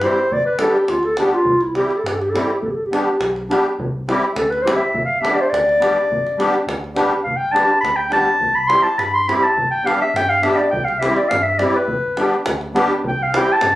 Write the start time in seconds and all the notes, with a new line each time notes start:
0.01 G3 C4 E4 G4 C5, davul high
0.31 G1 D5, davul low
0.46 B4
0.59 G3 B3 D4 G4 A4, davul high
0.75 G4
0.88 D2 F4, davul high
1.03 A4, davul high
1.17 G3 B3 D4 G4, davul high
1.33 F4
1.45 C2, davul low
1.61 E4, davul high
1.74 G3 C4 E4 G4, davul high
1.88 G4, davul high
1.97 A4
2.04 G2 G4, davul high
2.13 A4
2.20 G4, davul high
2.30 G3 A4
2.34 C4 E4 G4, davul high
2.39 G4
2.45 A4
2.50 G4, davul high
2.61 G1 A4, davul low
2.70 G4 A4
2.85 G4
2.91 G3 B3 D4 G4, davul high
3.20 B1, davul high
3.36 davul high
3.49 G3 B3 D4 G4, davul high
3.78 C2, davul low
4.08 G3 C4 E4 G4, davul high
4.35 D2 A4, davul high
4.50 B4, davul high
4.62 G3 C4 G4 C5
4.66 E4, davul high
4.76 E5
4.93 G1, davul low
5.05 F5
5.20 G3 B3 D4 G4 E5
5.25 davul high
5.35 D5
5.41 C5
5.49 D2 D5
5.54 davul high
5.69 davul high
5.79 G3 B3 D4 G4, davul high
6.10 G1, davul low
6.27 davul high
6.38 G3 B3 D4 G4, davul high
6.54 davul high
6.66 D2, davul high
6.84 davul high
6.95 G3 B3 D4 G4, davul high
7.11 davul high
7.23 G1 F5, davul low
7.37 G5
7.52 G3 B3 D4 G4 A5
7.56 davul high
7.81 D2 B5, davul high
7.96 G5
8.10 G3 B3 D4 G4 A5, davul high
8.40 C2, davul low
8.55 B5
8.68 G3 C4 E4 G4 C6, davul high
8.83 A5
8.98 G2 B5, davul high
9.14 C6, davul high
9.28 G3 C4 E4 G4 B5, davul high
9.43 A5
9.55 G1, davul low
9.71 G5
9.83 G3 B3 D4 G4 F5
9.87 davul high
10.02 E5
10.14 G2 G5, davul high
10.29 F5, davul high
10.42 G3 B3 D4 G4 E5, davul high
10.56 D5
10.71 C2 G5, davul low
10.85 F5, davul high
10.99 G3 C4 E4 G4 E5, davul high
11.16 D5, davul high
11.28 G2 F5, davul high
11.42 E5
11.58 G3 C4 E4 G4 D5, davul high
11.75 B4
11.88 G1, davul low
12.17 G3 B3 D4 G4, davul high
12.46 D2, davul high
12.61 davul high
12.74 G3 B3 D4 G4, davul high
13.04 C2 G5, davul low
13.22 F5
13.33 G3 C4 E4 G4, davul high
13.37 G5
13.52 A5
13.61 G2, davul high